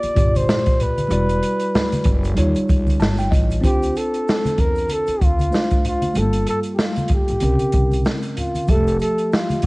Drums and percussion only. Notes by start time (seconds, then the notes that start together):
0.03 closed hi-hat, maracas
0.16 kick, closed hi-hat, maracas
0.35 closed hi-hat, high conga, maracas
0.49 snare, maracas
0.66 kick, closed hi-hat, maracas
0.80 closed hi-hat, low conga, maracas
0.98 closed hi-hat, high conga, maracas
1.10 closed hi-hat, maracas
1.29 closed hi-hat, maracas
1.43 closed hi-hat, maracas
1.60 closed hi-hat, maracas
1.75 snare, low conga, maracas
1.92 closed hi-hat, high conga, maracas
2.04 kick, closed hi-hat, low conga, maracas
2.24 closed hi-hat, maracas
2.37 closed hi-hat, high conga, maracas
2.55 closed hi-hat, maracas
2.69 kick, closed hi-hat, maracas
2.87 closed hi-hat, high conga, maracas
3.00 snare, maracas
3.18 closed hi-hat, maracas
3.32 kick, closed hi-hat, high conga, low conga, maracas
3.50 closed hi-hat, maracas
3.64 kick, closed hi-hat, maracas
3.82 closed hi-hat, maracas
3.96 closed hi-hat, maracas
4.14 closed hi-hat, maracas
4.28 snare, maracas
4.45 closed hi-hat, high conga, maracas
4.58 kick, closed hi-hat, low conga, maracas
4.76 closed hi-hat, maracas
4.89 closed hi-hat, high conga, maracas
5.07 closed hi-hat, maracas
5.21 kick, closed hi-hat, maracas
5.39 closed hi-hat, high conga, maracas
5.52 snare, maracas
5.70 kick, closed hi-hat, maracas
5.85 closed hi-hat, low conga, maracas
6.02 closed hi-hat, high conga, maracas
6.14 closed hi-hat, maracas
6.33 closed hi-hat, maracas
6.47 closed hi-hat, maracas
6.63 closed hi-hat, maracas
6.79 snare, maracas
6.96 closed hi-hat, high conga, maracas
7.08 kick, closed hi-hat, low conga, maracas
7.28 closed hi-hat, maracas
7.40 closed hi-hat, high conga, maracas
7.59 closed hi-hat, maracas
7.72 kick, closed hi-hat, maracas
7.91 closed hi-hat, high conga, maracas
8.05 snare, maracas
8.22 closed hi-hat, maracas
8.37 closed hi-hat, low conga, maracas
8.55 closed hi-hat, high conga, maracas
8.68 kick, closed hi-hat, maracas
8.87 closed hi-hat, maracas
9.00 closed hi-hat, maracas
9.18 closed hi-hat, maracas
9.32 snare, maracas
9.50 closed hi-hat, high conga, maracas
9.62 kick, closed hi-hat